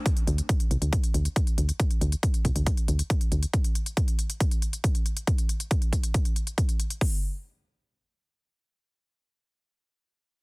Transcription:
<<
  \new Staff \with { instrumentName = "FM bass" } { \clef bass \time 4/4 \key d \dorian \tempo 4 = 138 r8 d,16 r8. c,16 d,16 r8 d,16 r8. d,16 r16 | r8 d,16 r8. c,16 d,16 r8 d,16 r8. d,16 r16 | r1 | r1 |
r1 | r1 | }
  \new DrumStaff \with { instrumentName = "Drums" } \drummode { \time 4/4 <hh bd>16 hh16 hh16 hh16 <hh bd>16 hh16 hh16 hh16 <hh bd>16 hh16 hh16 hh16 <hh bd>16 hh16 hh16 hh16 | <hh bd>16 hh16 hh16 hh16 <hh bd>16 hh16 <hh bd>16 hh16 <hh bd>16 hh16 hh16 hh16 <hh bd>16 hh16 hh16 hh16 | <hh bd>16 hh16 hh16 hh16 <hh bd>16 hh16 hh16 hh16 <hh bd>16 hh16 hh16 hh16 <hh bd>16 hh16 hh16 hh16 | <hh bd>16 hh16 hh16 hh16 <hh bd>16 hh16 <hh bd>16 hh16 <hh bd>16 hh16 hh16 hh16 <hh bd>16 hh16 hh16 hh16 |
<hho bd>4 r4 r4 r4 | r4 r4 r4 r4 | }
>>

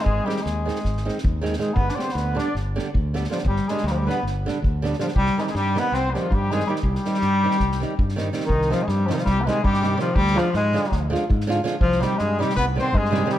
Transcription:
<<
  \new Staff \with { instrumentName = "Trumpet" } { \time 9/8 \key c \minor \tempo 4. = 107 aes'8 g'8 aes'2 r4 aes'8 | b'16. d''32 c''8 b'8 d''8 r2 f'8 | g'8 aes'8 g'32 f'32 g'16 b'8 r2 f'8 | g'8 aes'32 r32 aes'16 g'8 b'8 c''16. g'32 f'8 g'8 aes'8 g'8 |
g'2.~ g'8 r4 | ees'8 f'16. aes'32 g'8 f'32 ees'32 f'16 g'16. b'32 aes'8 g'4 f'8 | g'8 f'8 aes'4. r2 | f'8 g'8 aes'8 g'8 b'8 c''8 aes'4 g'8 | }
  \new Staff \with { instrumentName = "Nylon-string guitar" } { \clef bass \time 9/8 \key c \minor r8 <ees aes c' ees'>8 r8 <ees aes c' ees'>8 r8 <ees aes c' ees'>8 r8 <ees aes c' ees'>8 <ees aes c' ees'>8 | r8 <d g b d'>8 r8 <d g b d'>8 r8 <d g b d'>8 r8 <d g b d'>8 <d g b d'>8 | r8 <d g b d'>8 r8 <d g b d'>8 r8 <d g b d'>8 r8 <d g b d'>8 <d g b d'>8 | r8 <ees g c' ees'>8 r8 <ees g c' ees'>8 r8 <ees g c' ees'>8 r8 <ees g c' ees'>8 <ees g c' ees'>8 |
r8 <ees g c' ees'>8 r8 <ees g c' ees'>8 r8 <ees g c' ees'>8 r8 <ees g c' ees'>8 <ees g c' ees'>8 | r8 <c ees g c' ees'>8 r8 <c ees g c' ees'>8 r8 <c ees g c' ees'>8 r8 <c ees g c' ees'>8 <c ees g c' ees'>8 | r8 <d f aes d' f'>8 r8 <d f aes d' f'>8 r8 <d f aes d' f'>8 r8 <d f aes d' f'>8 <d f aes d' f'>8 | r8 <c ees g c' ees'>8 r8 <c ees g c' ees'>8 r8 <c ees g c' ees'>8 r8 <c ees g c' ees'>8 <c ees g c' ees'>8 | }
  \new Staff \with { instrumentName = "Bass clarinet" } { \clef bass \time 9/8 \key c \minor aes8 g8 aes2 r4 aes8 | b16. d'32 c'8 b8 d'8 r2 f8 | g8 aes8 g32 f32 g16 b8 r2 f8 | g8 aes32 g32 aes16 g8 b8 c'16. g32 f8 g8 aes8 g8 |
g2.~ g8 r4 | ees8 f16. aes32 g8 f32 ees32 f16 g16. b32 aes8 g4 f8 | g8 f8 aes4. r2 | f8 g8 aes8 g8 b8 c'8 aes4 g8 | }
  \new Staff \with { instrumentName = "Fingered electric bass" } { \clef bass \time 9/8 \key c \minor aes,,8 r8 ees,4 aes,,4 ees,4. | g,,8 r8 d,4 g,,4 d,4. | g,,8 r8 d,4 g,,4 d,4. | c,8 r8 g,4 c,4 g,4. |
c,8 r8 g,4 c,4 g,4. | c,4 g,4 c,4 g,4. | d,4 aes,4 d,4 aes,4. | c,4 g,4 c,4 g,4. | }
  \new DrumStaff \with { instrumentName = "Drums" } \drummode { \time 9/8 bd8 sn16 sn16 sn8 sn16 sn16 <bd sn>16 sn16 sn16 sn16 bd8 sn16 sn16 sn8 | bd16 sn16 sn16 sn16 sn8 sn8 sn8 sn8 bd8 sn16 sn16 sn16 sn16 | bd16 sn16 sn16 sn16 sn8 sn8 sn8 sn8 bd8 sn16 sn16 sn16 sn16 | bd16 sn16 sn16 sn16 sn8 sn8 sn8 sn8 bd8 sn16 sn8 sn16 |
bd16 sn16 sn16 sn16 sn8. sn16 <bd sn>16 sn16 sn8 bd16 sn16 sn8 sn16 sn16 | bd16 sn16 sn8 sn8 sn16 sn16 <bd sn>8 sn8 bd16 sn16 sn8 sn8 | bd16 sn16 sn8 sn8 sn16 sn16 <bd sn>8 sn8 bd16 sn16 sn8 sn8 | bd16 sn16 sn8 sn8 sn16 sn16 <bd sn>8 sn8 bd16 sn16 sn8 sn8 | }
>>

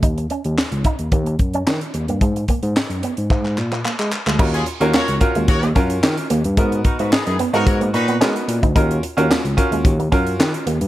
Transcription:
<<
  \new Staff \with { instrumentName = "Horn section" } { \time 4/4 \key ees \minor \tempo 4 = 110 r1 | r1 | r16 <des' f' aes'>16 r16 <bes ges' bes'>16 <ges' bes' des''>8 r8 <ges' bes' des''>8 r4. | r8 <ees' ges' bes'>16 <ees' ges' ces''>16 <ces' ees' aes'>16 <ces' ees' aes'>16 r16 <ees' ges' bes'>16 <ges' bes' des''>16 r16 <ees' ges' ces''>8 r4 |
r1 | }
  \new Staff \with { instrumentName = "Grand piano" } { \time 4/4 \key ees \minor r1 | r1 | <des' f' ges' bes'>8 r16 <des' f' ges' bes'>8 r16 <des' f' ges' bes'>8 r8 <des' f' ges' bes'>4 r8 | <ces' ees' ges' bes'>4 r8. <ces' ees' ges' bes'>8. r8 <ces' ees' ges' bes'>8 r8 |
<des' f' ges' bes'>8 r16 <des' f' ges' bes'>8 r16 <des' f' ges' bes'>8 r8 <des' f' ges' bes'>4 r8 | }
  \new Staff \with { instrumentName = "Clean electric guitar" } { \time 4/4 \key ees \minor ees'16 r16 des'16 r8. ees'16 r16 bes16 r8 des'16 des'16 r8 bes16 | aes16 r16 bes16 r8. ces'16 r16 aes16 r8 bes16 bes16 r8 aes16 | ees'16 r8 des'16 bes16 r8 aes16 r16 bes16 des'16 r8. bes16 r16 | aes16 r8 aes16 r8 ces'16 aes16 r16 bes16 r16 ces'16 des'16 r8 ees'16 |
ees'16 r8 des'16 bes16 r8 aes16 r16 bes16 des'16 r8. bes16 r16 | }
  \new Staff \with { instrumentName = "Tine electric piano" } { \clef bass \time 4/4 \key ees \minor ees,8 r16 ees,16 r16 des,16 r16 ees,16 ees,8 ges,8 ees16 r16 ees,16 g,16 | aes,8 r16 aes,16 r16 ges,16 r16 aes,16 aes,8 bes,8 r16 aes16 r16 d,16 | ees,8 r16 ees,16 r16 des,16 r16 ees,16 ees,8 ges,8 ees16 r16 ees,16 g,16 | aes,8 r16 aes,16 r16 ges,16 r16 aes,16 aes,8 bes,8 aes16 r16 bes,16 d,16 |
ees,8 r16 ees,16 r16 des,16 r16 ees,16 ees,8 ges,8 ees16 r16 ees,16 g,16 | }
  \new DrumStaff \with { instrumentName = "Drums" } \drummode { \time 4/4 <hh bd>16 hh16 hh16 hh16 <hc sn>16 hh16 <hh bd>16 hh16 <hh bd>16 hh16 <hh bd>16 hh16 <hc sn>16 hh16 hh16 hh16 | <hh bd>16 hh16 <hh bd>16 hh16 <hc sn>16 hh16 hh16 hh16 <hc bd>16 hc16 hc16 hc16 hc16 hc16 hc16 hc16 | <cymc bd>16 hh16 hh16 hh16 <hc sn>16 hh16 <hh bd>16 hh16 <hh bd>16 hh16 <hh bd>16 hh16 <hc sn>16 hh16 hh16 hh16 | <hh bd>16 hh16 <hh bd>16 hh16 <hc sn>16 hh16 hh16 hh16 <hh bd>16 hh16 hh16 hh16 <hc sn>16 hh16 hh16 <hh bd>16 |
<hh bd>16 hh16 hh16 hh16 <hc sn>16 hh16 <hh bd>16 hh16 <hh bd>16 hh16 <hh bd>16 hh16 <hc sn>16 hh16 hh16 hh16 | }
>>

